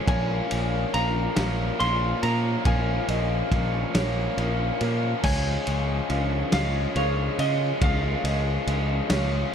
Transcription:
0.06 0.40 A#1 loud
0.06 0.92 A#2 loud
0.06 0.53 F3 loud
0.06 0.51 A#3 loud
0.06 0.50 C#4 loud
0.06 0.93 C#5 loud
0.06 0.90 G#5 loud
0.06 kick loud
0.06 ride loud
0.50 0.84 A#1 medium
0.50 0.94 F3 medium
0.50 0.95 A#3 medium
0.50 0.96 C#4 medium
0.50 ride medium
0.93 1.26 A#1 loud
0.93 1.78 A#2 medium
0.93 1.39 F3 medium
0.93 1.37 A#3 medium
0.93 1.35 C#4 medium
0.93 1.78 F5 medium
0.93 1.79 A#5 loud
0.93 ride medium
1.36 1.70 A#1 loud
1.36 1.77 A#2 medium
1.36 1.80 F3 medium
1.36 1.80 A#3 medium
1.36 1.82 C#4 medium
1.36 snare loud
1.36 ride loud
1.79 2.13 A#1 medium
1.79 2.63 A#2 medium
1.79 2.25 F3 medium
1.79 2.23 A#3 medium
1.79 2.22 C#4 medium
1.79 2.64 F5 medium
1.79 2.19 C6 loud
1.79 ride medium
2.22 2.55 A#2 medium
2.22 2.66 F3 medium
2.22 2.66 A#3 medium
2.22 2.68 C#4 medium
2.22 2.66 A#5 loud
2.22 ride medium
2.65 2.98 A#1 loud
2.65 3.50 A#2 medium
2.65 3.11 F3 loud
2.65 3.09 A#3 loud
2.65 3.08 C#4 loud
2.65 3.09 F5 loud
2.65 4.34 G#5 medium
2.65 kick loud
2.65 ride loud
3.08 3.41 A#1 medium
3.08 3.52 F3 medium
3.08 3.53 A#3 medium
3.08 3.54 C#4 medium
3.08 3.95 D#5 medium
3.08 ride medium
3.51 3.84 A#1 medium
3.51 4.36 A#2 medium
3.51 3.97 F3 medium
3.51 3.95 A#3 medium
3.51 3.94 C#4 medium
3.51 kick medium
3.51 ride medium
3.95 4.27 A#1 medium
3.95 4.36 A#2 medium
3.95 4.38 F3 medium
3.95 4.39 A#3 medium
3.95 4.41 C#4 medium
3.95 4.81 C#5 medium
3.95 snare loud
3.95 ride loud
4.37 4.70 A#1 medium
4.37 5.21 A#2 medium
4.37 4.83 F3 medium
4.37 4.81 A#3 medium
4.37 4.80 C#4 loud
4.37 ride medium
4.80 5.13 A#2 medium
4.80 5.24 F3 medium
4.80 5.22 A#3 medium
4.80 5.26 C#4 medium
4.80 5.24 A#4 medium
4.80 ride medium
5.23 5.56 C#2 loud
5.23 6.09 C#3 loud
5.23 5.69 F3 loud
5.23 5.68 G#3 loud
5.23 5.66 C#4 loud
5.23 6.10 C#5 loud
5.23 6.56 G#5 loud
5.23 kick loud
5.23 crash loud
5.66 5.99 C#2 medium
5.66 6.10 F3 medium
5.66 6.11 G#3 medium
5.66 6.12 C#4 medium
5.66 ride medium
6.09 6.42 C#2 loud
6.09 6.94 C#3 medium
6.09 6.56 F3 medium
6.09 6.54 G#3 medium
6.09 6.53 C#4 medium
6.09 6.94 F5 medium
6.09 ride medium
6.52 6.85 C#2 loud
6.52 6.94 C#3 medium
6.52 6.97 G#3 medium
6.52 6.98 C#4 medium
6.52 6.93 F5 loud
6.52 snare loud
6.52 ride loud
6.56 6.96 F3 medium
6.95 7.28 C#2 medium
6.95 7.80 C#3 medium
6.95 7.41 F3 medium
6.95 7.39 G#3 medium
6.95 7.37 C#4 medium
6.95 7.36 C#5 loud
6.95 7.80 F5 medium
6.95 ride medium
7.38 7.71 C#3 medium
7.38 7.82 F3 medium
7.38 7.83 G#3 medium
7.38 7.84 C#4 medium
7.38 7.79 D#5 loud
7.38 ride medium
7.81 8.14 C#2 loud
7.81 8.65 C#3 medium
7.81 8.27 F3 loud
7.81 8.25 G#3 loud
7.81 8.23 C#4 loud
7.81 8.24 F5 loud
7.81 9.51 F5 loud
7.81 kick loud
7.81 ride loud
8.24 8.56 C#2 medium
8.24 8.67 F3 medium
8.24 8.69 G#3 medium
8.24 8.69 C#4 medium
8.24 9.10 D#5 medium
8.24 ride medium
8.67 9.00 C#2 loud
8.67 9.51 C#3 medium
8.67 9.13 F3 medium
8.67 9.11 G#3 medium
8.67 9.09 C#4 medium
8.67 ride medium
9.10 9.43 C#2 medium
9.10 9.51 C#3 medium
9.10 9.53 F3 medium
9.10 9.55 G#3 medium
9.10 9.55 C#4 medium
9.10 9.55 C#5 medium
9.10 snare loud
9.10 ride loud

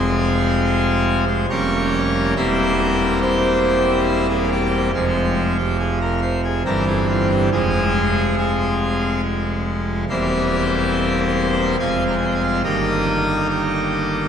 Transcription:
0.00 1.46 F1 medium
0.00 1.46 F2 medium
0.00 1.46 G#3 medium
0.00 1.25 C4 medium
0.00 1.25 F4 medium
0.00 1.25 G#4 loud
1.28 1.46 C5 loud
1.50 2.34 F1 medium
1.50 2.34 F2 medium
1.50 2.34 G3 medium
1.50 2.34 A#3 soft
1.50 2.34 C#4 soft
1.50 2.34 G4 medium
1.50 2.34 A#4 medium
1.50 2.34 C#5 loud
2.36 4.91 E1 medium
2.36 4.91 E2 medium
2.36 4.91 G3 medium
2.36 4.91 A#3 medium
2.36 4.91 C4 medium
2.36 3.20 E4 medium
2.36 3.20 G4 medium
2.36 3.19 C5 loud
3.21 4.27 E4 medium
3.21 4.27 G4 medium
3.21 4.27 C5 loud
4.30 4.48 G#4 loud
4.52 4.89 G4 loud
4.94 6.62 F1 medium
4.94 6.62 F2 medium
4.94 6.62 F3 medium
4.94 5.57 G#3 medium
4.94 5.57 C4 medium
4.94 5.57 F4 loud
5.59 5.77 G4 medium
5.80 5.98 G#4 loud
6.02 6.20 A#4 loud
6.22 6.41 C5 loud
6.44 6.63 G#4 loud
6.65 7.49 G1 medium
6.65 7.49 G2 medium
6.65 7.49 E3 medium
6.65 7.49 G3 medium
6.65 7.49 C4 medium
6.65 6.84 E4 loud
6.65 6.84 G4 medium
6.65 6.84 A#4 loud
6.87 7.06 G#4 loud
7.09 7.28 F4 loud
7.31 7.49 G4 loud
7.52 10.05 F1 medium
7.52 10.05 F2 medium
7.52 10.05 F3 medium
7.52 10.05 G#3 medium
7.52 8.35 C4 loud
7.52 8.35 F4 medium
7.52 8.35 G#4 loud
8.38 9.21 C4 medium
8.38 9.21 F4 medium
8.38 9.21 G#4 medium
10.09 11.76 E1 medium
10.09 11.76 E2 medium
10.09 11.76 G3 medium
10.09 11.76 A#3 medium
10.09 11.76 C4 medium
10.09 11.76 E4 loud
10.09 11.76 G4 medium
10.09 11.76 C5 loud
11.79 12.62 F1 medium
11.79 12.62 F2 medium
11.79 12.62 F3 medium
11.79 12.62 G#3 medium
11.79 12.62 C4 medium
11.79 12.04 C5 medium
11.79 12.04 F5 medium
11.79 12.04 G#5 loud
12.08 12.15 A#5 medium
12.18 12.25 G#5 loud
12.26 12.33 G5 loud
12.34 12.42 G#5 medium
12.43 12.61 F5 loud
12.64 14.28 G1 medium
12.64 14.28 G2 medium
12.64 14.28 D#3 medium
12.64 14.28 A#3 medium
12.64 14.28 D#4 medium
12.64 13.47 A#4 medium
12.64 13.47 D#5 medium
12.64 13.47 G5 loud
13.50 14.28 G4 medium
13.50 14.28 A#4 medium
13.50 14.28 D#5 loud

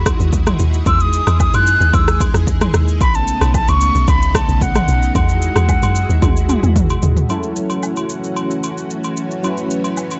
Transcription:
0.00 0.14 E2 loud
0.00 2.97 G#3 medium
0.00 2.97 D#4 medium
0.00 2.97 E4 medium
0.00 0.84 F#4 loud
0.06 kick loud
0.06 cross-stick loud
0.06 high agogo medium
0.06 shaker loud
0.20 0.54 D#2 loud
0.20 shaker medium
0.33 kick medium
0.33 shaker medium
0.46 cross-stick medium
0.46 mid tom medium
0.46 high agogo medium
0.46 shaker medium
0.59 0.82 D#2 medium
0.59 shaker medium
0.73 shaker medium
0.86 1.21 E2 loud
0.86 2.99 G#4 loud
0.86 1.03 E6 loud
0.86 kick loud
0.86 high agogo medium
0.86 shaker medium
1.00 1.40 D#6 loud
1.00 shaker medium
1.13 shaker loud
1.27 1.50 E2 loud
1.27 cross-stick medium
1.27 high agogo medium
1.27 shaker medium
1.40 1.56 D#6 loud
1.40 kick loud
1.40 low woodblock medium
1.40 shaker medium
1.53 1.77 F#2 medium
1.53 1.96 F#6 loud
1.53 high agogo medium
1.53 shaker medium
1.66 shaker loud
1.81 1.92 D#2 loud
1.81 shaker medium
1.93 2.28 D#2 loud
1.93 2.21 E6 loud
1.93 kick loud
1.93 high agogo medium
1.93 shaker medium
2.08 cross-stick loud
2.08 shaker medium
2.20 kick loud
2.20 high agogo medium
2.20 shaker loud
2.34 2.68 E2 medium
2.34 cross-stick medium
2.34 shaker medium
2.47 kick medium
2.47 shaker medium
2.61 cross-stick medium
2.61 mid tom medium
2.61 high agogo medium
2.61 shaker medium
2.74 3.02 D#2 loud
2.74 cross-stick loud
2.74 shaker medium
2.88 shaker medium
3.01 3.35 B1 loud
3.01 5.13 C#3 loud
3.01 5.13 A3 medium
3.01 5.13 B3 medium
3.01 7.25 D#4 loud
3.01 3.17 B5 loud
3.01 kick loud
3.01 high agogo medium
3.01 shaker medium
3.14 3.55 A5 loud
3.14 shaker medium
3.27 shaker medium
3.41 3.64 B1 loud
3.41 cross-stick medium
3.41 high agogo medium
3.41 shaker medium
3.54 3.70 A5 loud
3.54 kick loud
3.54 low woodblock medium
3.54 shaker medium
3.68 3.91 C#2 loud
3.68 4.10 C#6 loud
3.68 high agogo medium
3.68 shaker medium
3.81 shaker loud
3.95 4.06 B1 loud
3.95 shaker medium
4.08 4.43 C#2 loud
4.08 4.37 B5 loud
4.08 kick loud
4.08 high agogo medium
4.08 shaker medium
4.22 shaker medium
4.35 4.64 A5 loud
4.35 kick loud
4.35 cross-stick loud
4.35 high agogo medium
4.35 shaker loud
4.49 4.82 B1 loud
4.49 shaker medium
4.61 5.15 F#5 loud
4.61 kick loud
4.61 shaker medium
4.75 cross-stick medium
4.75 mid tom medium
4.75 high agogo medium
4.75 shaker medium
4.88 5.11 B1 loud
4.88 shaker medium
5.02 shaker medium
5.15 5.50 E2 loud
5.15 7.27 G#3 medium
5.15 7.27 E4 medium
5.15 7.27 F#4 loud
5.15 6.72 F#5 loud
5.15 kick loud
5.15 high agogo medium
5.15 shaker medium
5.29 shaker medium
5.42 shaker medium
5.56 5.79 E2 loud
5.56 cross-stick medium
5.56 high agogo medium
5.56 shaker medium
5.69 kick loud
5.69 low woodblock medium
5.69 shaker medium
5.82 6.05 F#2 medium
5.82 high agogo medium
5.82 shaker medium
5.95 shaker loud
6.09 6.20 D#2 medium
6.09 shaker medium
6.22 6.57 D#2 loud
6.22 kick loud
6.22 high tom medium
6.22 high agogo medium
6.22 shaker medium
6.37 shaker medium
6.49 mid tom medium
6.49 high agogo medium
6.49 shaker loud
6.63 6.97 E2 medium
6.63 mid tom medium
6.63 shaker medium
6.76 kick loud
6.76 mid tom medium
6.76 shaker medium
6.90 high agogo medium
6.90 shaker medium
7.02 7.25 D#2 medium
7.02 floor tom loud
7.02 shaker medium
7.17 floor tom loud
7.17 shaker medium
7.29 10.20 E3 medium
7.29 9.39 F#3 medium
7.29 10.20 A3 medium
7.29 10.20 C#4 medium
7.29 9.40 C#4 medium
7.29 9.40 E4 medium
7.29 10.20 F#4 loud
7.29 9.41 A4 medium
7.29 high agogo medium
7.29 shaker medium
7.43 shaker soft
7.56 shaker medium
7.70 high agogo medium
7.70 shaker medium
7.83 low woodblock medium
7.83 shaker medium
7.96 high agogo medium
7.96 shaker medium
8.09 shaker medium
8.24 shaker soft
8.36 high agogo medium
8.36 shaker medium
8.51 shaker medium
8.63 high agogo medium
8.63 shaker medium
8.78 shaker soft
8.90 shaker medium
9.04 high agogo medium
9.04 shaker medium
9.17 shaker medium
9.31 shaker soft
9.43 10.20 F#3 medium
9.43 10.20 C#4 medium
9.43 10.20 E4 medium
9.43 10.20 B4 medium
9.43 high agogo medium
9.43 shaker medium
9.57 shaker soft
9.70 shaker medium
9.84 high agogo medium
9.84 shaker medium
9.97 low woodblock medium
9.97 shaker medium
10.11 high agogo medium
10.11 shaker medium

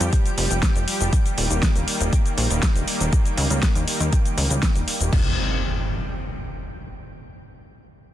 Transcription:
0.00 0.10 F2 medium
0.00 1.09 F3 medium
0.00 5.09 G3 medium
0.00 1.09 G4 medium
0.00 5.14 G5 medium
0.00 closed hi-hat soft
0.00 cabasa medium
0.13 kick loud
0.13 closed hi-hat loud
0.13 cabasa medium
0.26 closed hi-hat soft
0.26 cabasa soft
0.38 0.48 F1 medium
0.38 open hi-hat loud
0.51 0.60 F1 medium
0.51 closed hi-hat soft
0.51 cabasa medium
0.63 kick loud
0.63 snare loud
0.63 closed hi-hat medium
0.63 cabasa medium
0.76 0.85 F1 medium
0.76 closed hi-hat soft
0.76 cabasa soft
0.88 open hi-hat loud
1.01 1.10 F1 medium
1.01 closed hi-hat soft
1.01 cabasa medium
1.13 5.09 D#3 medium
1.13 5.09 A#3 medium
1.13 kick loud
1.13 closed hi-hat loud
1.13 cabasa medium
1.26 closed hi-hat soft
1.26 cabasa soft
1.38 1.48 D#1 medium
1.38 open hi-hat loud
1.50 1.60 D#1 medium
1.50 closed hi-hat soft
1.50 cabasa medium
1.63 kick loud
1.63 snare loud
1.63 closed hi-hat medium
1.63 cabasa medium
1.76 1.85 D#1 medium
1.76 closed hi-hat soft
1.76 cabasa soft
1.88 open hi-hat loud
2.01 2.10 D#1 medium
2.01 closed hi-hat soft
2.01 cabasa medium
2.13 kick loud
2.13 closed hi-hat medium
2.13 cabasa medium
2.26 closed hi-hat soft
2.26 cabasa soft
2.38 2.48 A#1 medium
2.38 open hi-hat loud
2.50 2.60 D#1 medium
2.50 closed hi-hat soft
2.50 cabasa medium
2.63 kick loud
2.63 snare loud
2.63 closed hi-hat medium
2.63 cabasa medium
2.75 2.85 D#1 medium
2.75 closed hi-hat soft
2.75 cabasa soft
2.88 open hi-hat loud
3.00 3.10 D#1 medium
3.00 closed hi-hat soft
3.00 cabasa medium
3.13 kick loud
3.13 closed hi-hat loud
3.13 cabasa medium
3.25 closed hi-hat soft
3.25 cabasa soft
3.38 3.48 C#2 medium
3.38 open hi-hat loud
3.50 3.60 C#2 medium
3.50 closed hi-hat soft
3.50 cabasa medium
3.63 kick loud
3.63 snare loud
3.63 closed hi-hat loud
3.63 cabasa medium
3.75 3.85 D#2 medium
3.75 closed hi-hat soft
3.75 cabasa soft
3.88 open hi-hat loud
4.00 4.10 D#2 medium
4.00 closed hi-hat soft
4.00 cabasa medium
4.13 kick loud
4.13 closed hi-hat loud
4.13 cabasa medium
4.25 closed hi-hat soft
4.25 cabasa soft
4.38 4.48 C#2 medium
4.38 open hi-hat loud
4.50 4.60 C#2 medium
4.50 closed hi-hat soft
4.50 cabasa medium
4.63 kick loud
4.63 snare loud
4.63 closed hi-hat loud
4.63 cabasa medium
4.75 4.85 D#1 medium
4.75 closed hi-hat soft
4.75 cabasa soft
4.88 open hi-hat loud
5.00 5.10 D#1 medium
5.00 closed hi-hat soft
5.00 cabasa medium
5.13 5.36 F3 medium
5.13 5.36 G#3 medium
5.13 5.36 C4 medium
5.13 kick loud
5.13 crash medium
5.13 impact medium

